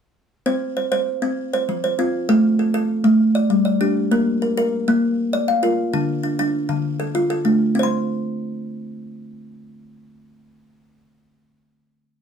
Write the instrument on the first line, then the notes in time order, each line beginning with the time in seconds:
kalimba
0.46 C4 C5
0.77 C5
0.92 C5
1.22 C4
1.53 C5
1.69 F3
1.84 C5
1.99 C4 F4
2.29 A3 A4
2.59 A4
2.74 A4
3.04 A3
3.35 D5
3.50 G3
3.65 D5
3.81 D4 G4
4.11 A#3 A#4
4.42 A#4
4.57 A#4
4.88 A#3
5.33 D5
5.48 F5
5.63 F4 A#4
5.93 D3 D4
6.23 D4
6.39 D4
6.69 D3
7.00 A4
7.15 F4
7.30 A4
7.45 A3 D4
7.75 C4
7.79 C5
7.83 C6